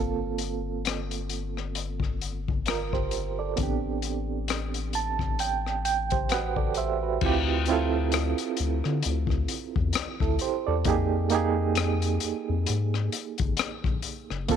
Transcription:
0.00 3.54 G1 medium
0.00 3.52 A#3 medium
0.00 3.54 C4 medium
0.00 2.64 F4 medium
0.00 2.65 A4 medium
0.38 closed hi-hat soft
0.85 cross-stick loud
0.85 closed hi-hat medium
1.11 closed hi-hat soft
1.29 closed hi-hat medium
1.57 cross-stick soft
1.75 closed hi-hat medium
2.00 kick medium
2.00 cross-stick soft
2.21 closed hi-hat medium
2.48 kick medium
2.66 2.92 F4 soft
2.66 2.91 A#4 medium
2.66 cross-stick loud
2.66 closed hi-hat medium
2.93 3.36 G4 soft
2.93 3.36 C5 medium
2.93 kick medium
2.93 cross-stick soft
3.11 closed hi-hat medium
3.39 3.82 A4 soft
3.39 3.82 D5 medium
3.56 7.18 A1 medium
3.56 7.17 B3 medium
3.56 7.18 C4 medium
3.56 kick medium
3.56 closed hi-hat medium
3.61 7.19 D4 medium
3.61 5.84 G4 medium
4.02 closed hi-hat soft
4.48 cross-stick medium
4.48 closed hi-hat medium
4.74 closed hi-hat soft
4.93 5.37 A5 medium
4.93 closed hi-hat medium
5.19 kick medium
5.19 cross-stick soft
5.39 5.82 G5 medium
5.39 closed hi-hat medium
5.67 cross-stick soft
5.85 6.27 G5 medium
5.85 closed hi-hat medium
6.10 6.31 G4 soft
6.10 6.30 C5 medium
6.10 kick medium
6.10 closed hi-hat soft
6.29 6.56 F#4 soft
6.29 6.55 B4 medium
6.29 6.73 F#5 medium
6.29 cross-stick loud
6.29 closed hi-hat medium
6.56 6.76 A4 medium
6.56 6.75 D5 medium
6.56 kick medium
6.74 7.01 G4 soft
6.74 7.01 C5 medium
6.74 7.19 E5 medium
6.74 closed hi-hat medium
7.03 7.46 F#4 medium
7.03 7.45 B4 medium
7.21 8.34 D2 medium
7.21 7.59 C4 medium
7.21 7.59 E4 medium
7.21 7.60 F4 medium
7.21 kick loud
7.21 crash medium
7.26 7.61 G4 medium
7.66 9.12 C4 medium
7.66 9.12 E4 medium
7.66 closed hi-hat soft
7.71 9.13 F4 medium
7.71 9.14 A4 medium
8.12 cross-stick loud
8.12 closed hi-hat medium
8.38 closed hi-hat soft
8.57 8.82 D2 medium
8.57 closed hi-hat medium
8.84 9.03 D3 medium
8.84 cross-stick soft
9.03 9.46 D2 medium
9.03 closed hi-hat medium
9.27 kick medium
9.27 cross-stick soft
9.48 closed hi-hat medium
9.76 9.94 E2 medium
9.76 kick loud
9.93 cross-stick loud
9.93 closed hi-hat medium
9.97 10.07 D2 soft
10.20 10.39 D2 medium
10.20 10.40 E4 medium
10.20 10.40 A4 medium
10.20 kick medium
10.20 cross-stick soft
10.39 10.65 G4 medium
10.39 10.65 C5 medium
10.39 closed hi-hat medium
10.67 10.85 E2 medium
10.67 11.10 A4 medium
10.67 11.09 D5 medium
10.85 12.18 F2 medium
10.85 11.22 A#3 medium
10.85 11.23 D#4 medium
10.85 11.23 G4 medium
10.85 kick loud
10.85 closed hi-hat medium
10.89 11.24 G#4 medium
11.30 12.75 A#3 medium
11.30 12.75 D#4 medium
11.30 12.76 G4 medium
11.30 closed hi-hat medium
11.35 12.77 G#4 medium
11.75 cross-stick loud
11.75 closed hi-hat medium
12.02 closed hi-hat soft
12.20 12.34 F2 soft
12.20 closed hi-hat medium
12.49 12.66 F2 medium
12.66 13.09 G#2 medium
12.66 closed hi-hat medium
12.94 cross-stick soft
13.12 closed hi-hat medium
13.38 13.58 G#1 medium
13.38 kick medium
13.38 closed hi-hat soft
13.57 cross-stick loud
13.57 closed hi-hat medium
13.61 13.70 A#1 soft
13.84 14.02 A#1 medium
13.84 kick medium
13.84 cross-stick soft
14.02 closed hi-hat medium
14.30 14.48 F#1 medium
14.30 cross-stick soft
14.48 14.56 G1 loud
14.48 14.56 A#3 medium
14.48 14.56 C4 medium
14.48 14.56 F4 medium
14.48 14.56 A4 medium
14.48 kick loud
14.48 closed hi-hat medium

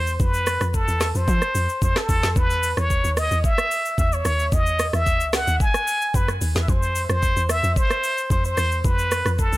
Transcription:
0.00 0.18 E2 medium
0.00 0.22 C5 loud
0.07 shaker medium
0.20 0.58 F2 loud
0.20 0.77 B4 loud
0.20 kick loud
0.20 shaker medium
0.34 shaker medium
0.47 cross-stick loud
0.47 open hi-hat medium
0.47 shaker medium
0.61 0.86 F2 loud
0.61 cross-stick medium
0.61 shaker medium
0.74 1.18 A4 medium
0.74 kick medium
0.74 shaker medium
0.88 1.13 E2 loud
0.88 shaker medium
1.01 cross-stick loud
1.01 snare medium
1.01 open hi-hat medium
1.01 shaker medium
1.15 1.27 F2 medium
1.15 1.83 C5 loud
1.15 shaker medium
1.28 1.41 F3 loud
1.28 kick loud
1.28 shaker medium
1.42 cross-stick medium
1.42 shaker medium
1.55 1.68 F2 medium
1.55 open hi-hat soft
1.55 shaker medium
1.69 shaker soft
1.82 1.95 F2 medium
1.82 1.99 C5 medium
1.82 kick loud
1.82 shaker medium
1.96 2.39 A4 loud
1.96 cross-stick medium
1.96 snare medium
1.96 shaker medium
2.09 2.22 E2 medium
2.09 kick medium
2.09 open hi-hat medium
2.09 shaker medium
2.23 2.35 F2 medium
2.23 snare medium
2.23 shaker medium
2.36 2.74 E2 loud
2.36 2.80 B4 loud
2.36 kick loud
2.36 shaker medium
2.50 shaker medium
2.63 open hi-hat medium
2.63 shaker medium
2.77 3.02 E2 loud
2.77 3.20 C#5 loud
2.77 cross-stick medium
2.77 shaker medium
2.90 kick medium
2.90 shaker medium
3.04 3.29 D#2 medium
3.04 shaker medium
3.17 3.45 D#5 loud
3.17 cross-stick loud
3.17 open hi-hat medium
3.17 shaker medium
3.31 3.43 E2 medium
3.31 shaker medium
3.44 3.95 E5 loud
3.44 kick loud
3.44 shaker medium
3.58 cross-stick loud
3.58 shaker medium
3.71 open hi-hat soft
3.71 shaker medium
3.86 shaker medium
3.98 4.23 E2 loud
3.98 4.15 E5 loud
3.98 kick loud
3.98 shaker medium
4.12 4.55 C#5 loud
4.12 shaker medium
4.25 4.50 D#2 loud
4.25 cross-stick medium
4.25 open hi-hat medium
4.25 shaker medium
4.39 shaker medium
4.52 4.90 E2 loud
4.52 4.94 D#5 loud
4.52 kick loud
4.52 shaker medium
4.66 shaker medium
4.79 cross-stick loud
4.79 open hi-hat medium
4.79 shaker medium
4.93 5.22 E2 loud
4.93 5.36 E5 loud
4.93 cross-stick medium
4.93 shaker medium
5.06 kick medium
5.06 shaker medium
5.20 5.45 C#2 medium
5.20 shaker medium
5.33 5.63 F#5 loud
5.33 cross-stick loud
5.33 snare medium
5.33 open hi-hat medium
5.33 shaker medium
5.47 5.59 D#2 medium
5.47 shaker medium
5.60 6.17 G#5 loud
5.60 kick loud
5.60 shaker medium
5.74 cross-stick medium
5.74 shaker medium
5.88 open hi-hat soft
5.88 shaker medium
6.02 shaker soft
6.14 6.39 F#2 medium
6.14 6.29 B4 loud
6.14 kick loud
6.14 shaker medium
6.28 cross-stick medium
6.28 shaker medium
6.41 6.54 D#2 medium
6.41 open hi-hat medium
6.41 shaker medium
6.55 6.67 E2 medium
6.55 snare medium
6.55 shaker medium
6.63 6.71 E5 medium
6.68 7.06 F2 loud
6.68 7.10 C5 loud
6.68 kick loud
6.68 shaker medium
6.83 shaker medium
6.96 open hi-hat medium
6.96 shaker medium
7.09 7.34 F2 medium
7.09 7.52 C5 loud
7.09 cross-stick medium
7.09 shaker medium
7.23 kick medium
7.23 shaker medium
7.36 7.61 E2 medium
7.36 shaker medium
7.49 7.79 E5 loud
7.49 cross-stick loud
7.49 open hi-hat medium
7.49 shaker medium
7.63 7.75 F2 medium
7.63 shaker medium
7.76 8.31 C5 loud
7.76 kick loud
7.76 shaker medium
7.91 cross-stick loud
7.91 shaker medium
8.04 open hi-hat medium
8.04 shaker medium
8.18 shaker medium
8.30 8.55 F2 loud
8.30 8.44 C5 loud
8.30 kick loud
8.30 shaker medium
8.45 8.87 C5 loud
8.45 shaker medium
8.57 8.82 E2 loud
8.57 cross-stick medium
8.57 open hi-hat medium
8.57 shaker medium
8.72 shaker medium
8.84 9.22 F2 loud
8.84 9.41 B4 loud
8.84 kick loud
8.84 shaker medium
8.99 shaker medium
9.12 cross-stick loud
9.12 open hi-hat medium
9.12 shaker medium
9.26 9.51 F2 loud
9.26 cross-stick medium
9.26 shaker medium
9.39 9.57 A4 medium
9.39 kick medium
9.39 shaker medium
9.53 9.57 C2 medium
9.53 shaker medium

